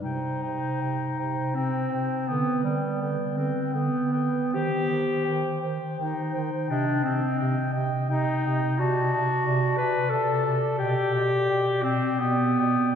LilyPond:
<<
  \new Staff \with { instrumentName = "Clarinet" } { \time 3/4 \key c \minor \tempo 4 = 83 g''8 g''8 g''8 g''8 g''8 g''8 | g''8 g''8 g''8 g''8 g''8 g''8 | g''8 g''8 g''8 g''8 g''8 g''8 | g''8 g''8 g''8 g''8 g''8 g''8 |
a''8 a''8 a''8 a''8 a''8 a''8 | g''8 g''8 g''8 g''8 g''8 g''8 | }
  \new Staff \with { instrumentName = "Alto saxophone" } { \time 3/4 \key c \minor c''8 c''8 c''8 c''8 c''8 c''8 | b'8 b'8 b'8 b'8 b'8 b'8 | c''8 c''8 c''8 c''8 c''8 c''8 | ees''8 ees''8 ees''8 ees''8 ees''8 ees''8 |
d''8 d''8 d''8 d''8 d''8 d''8 | d''8 d''8 d''8 d''8 d''8 d''8 | }
  \new Staff \with { instrumentName = "Clarinet" } { \time 3/4 \key c \minor ees'2 c'4 | b8 g4 c'8 b4 | g'4. r8 ees'4 | d'8 c'4 r8 ees'4 |
fis'4. b'8 a'4 | g'4. c'8 b4 | }
  \new Staff \with { instrumentName = "Bass clarinet" } { \clef bass \time 3/4 \key c \minor c8 c8 c8 c8 c8 c8 | d8 d8 d8 d8 d8 d8 | ees8 ees8 ees8 ees8 ees8 ees8 | c8 c8 c8 c8 c8 c8 |
c8 c8 c8 c8 c8 c8 | b,8 b,8 b,8 b,8 b,8 b,8 | }
>>